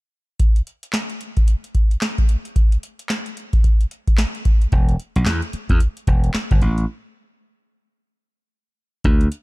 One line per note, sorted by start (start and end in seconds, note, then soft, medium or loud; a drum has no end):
0.40 kick medium
0.40 closed hi-hat medium
0.56 closed hi-hat soft
0.67 closed hi-hat medium
0.83 closed hi-hat medium
0.93 snare loud
0.93 clap medium
0.93 closed hi-hat medium
1.10 closed hi-hat soft
1.21 closed hi-hat medium
1.37 kick medium
1.37 closed hi-hat soft
1.48 closed hi-hat medium
1.64 closed hi-hat soft
1.75 kick medium
1.75 closed hi-hat medium
1.91 closed hi-hat soft
2.01 snare loud
2.01 clap medium
2.01 closed hi-hat medium
2.18 kick medium
2.18 closed hi-hat soft
2.29 closed hi-hat medium
2.45 closed hi-hat soft
2.56 kick loud
2.56 closed hi-hat medium
2.72 closed hi-hat medium
2.83 closed hi-hat medium
2.99 closed hi-hat medium
3.09 snare loud
3.09 clap medium
3.09 closed hi-hat medium
3.26 closed hi-hat soft
3.37 closed hi-hat medium
3.53 kick loud
3.53 closed hi-hat soft
3.64 kick medium
3.64 closed hi-hat medium
3.81 closed hi-hat soft
3.91 closed hi-hat medium
4.08 kick medium
4.08 closed hi-hat soft
4.18 snare loud
4.18 clap medium
4.18 closed hi-hat medium
4.35 closed hi-hat soft
4.45 kick loud
4.45 closed hi-hat medium
4.62 closed hi-hat soft
4.72 4.95 E1 loud
4.72 kick loud
4.72 closed hi-hat medium
4.89 closed hi-hat medium
5.00 closed hi-hat medium
5.16 5.25 B1 medium
5.16 closed hi-hat medium
5.26 5.40 E2 loud
5.26 snare medium
5.26 clap medium
5.26 closed hi-hat medium
5.42 closed hi-hat soft
5.53 muted slap bass stroke soft
5.53 closed hi-hat medium
5.69 5.79 E2 medium
5.69 kick loud
5.69 closed hi-hat soft
5.80 closed hi-hat medium
5.97 closed hi-hat soft
6.07 6.30 E1 medium
6.07 kick medium
6.07 closed hi-hat medium
6.24 closed hi-hat medium
6.34 muted slap bass stroke soft
6.34 snare medium
6.34 clap medium
6.34 closed hi-hat medium
6.51 6.60 G1 medium
6.51 kick medium
6.51 closed hi-hat soft
6.62 6.84 A1 medium
6.62 closed hi-hat medium
6.78 closed hi-hat soft
9.04 9.27 D2 loud
9.04 kick medium
9.04 closed hi-hat medium
9.21 closed hi-hat medium
9.32 closed hi-hat medium